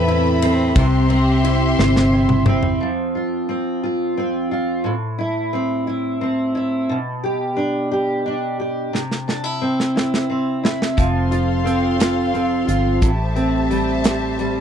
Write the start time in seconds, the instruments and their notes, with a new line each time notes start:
Already playing: fingered electric bass E2, steel-string acoustic guitar A2 C4 B4, string section C4 A4 E5 B5
0.08 steel-string acoustic guitar E4, ride
0.42 steel-string acoustic guitar C4, ride
0.76 fingered electric bass C2, steel-string acoustic guitar C3, string section G4 E5 C6, kick, ride
1.10 steel-string acoustic guitar C4, ride
1.44 steel-string acoustic guitar E4, ride
1.78 fingered electric bass G1, steel-string acoustic guitar C5, snare
1.96 snare
2.13 steel-string acoustic guitar E4
2.29 mid tom
2.46 steel-string acoustic guitar C4, mid tom
2.63 floor tom
2.81 steel-string acoustic guitar F3
3.15 steel-string acoustic guitar F4
3.49 steel-string acoustic guitar C4
3.84 steel-string acoustic guitar F4
4.17 steel-string acoustic guitar C4
4.51 steel-string acoustic guitar F4
4.84 steel-string acoustic guitar A2
5.18 steel-string acoustic guitar E4
5.53 steel-string acoustic guitar C4
5.87 steel-string acoustic guitar E4
6.21 steel-string acoustic guitar C4
6.55 steel-string acoustic guitar E4
6.89 steel-string acoustic guitar B2
7.24 steel-string acoustic guitar G4
7.56 steel-string acoustic guitar D4
7.91 steel-string acoustic guitar G4
8.26 steel-string acoustic guitar D4
8.60 steel-string acoustic guitar G4
8.93 steel-string acoustic guitar C3, snare
9.11 snare
9.28 steel-string acoustic guitar D4, snare
9.44 steel-string acoustic guitar E4
9.61 steel-string acoustic guitar C4
9.80 snare
9.96 steel-string acoustic guitar E4, snare
10.14 snare
10.30 steel-string acoustic guitar C4
10.63 steel-string acoustic guitar E4, snare
10.82 snare
10.97 fingered electric bass F1, steel-string acoustic guitar F3, string section A4 C5 F5 C6, kick, closed hi-hat
11.31 steel-string acoustic guitar F4, closed hi-hat
11.65 steel-string acoustic guitar C4, closed hi-hat
11.99 steel-string acoustic guitar F4, snare, closed hi-hat
12.34 steel-string acoustic guitar C4, closed hi-hat
12.67 fingered electric bass G1, steel-string acoustic guitar F4, closed hi-hat
13.01 fingered electric bass A1, steel-string acoustic guitar A2, string section G4 C5 E5 A5, kick, closed hi-hat
13.36 steel-string acoustic guitar C4, closed hi-hat
13.70 steel-string acoustic guitar G3, closed hi-hat
14.04 steel-string acoustic guitar C4, snare, closed hi-hat
14.39 steel-string acoustic guitar G3, closed hi-hat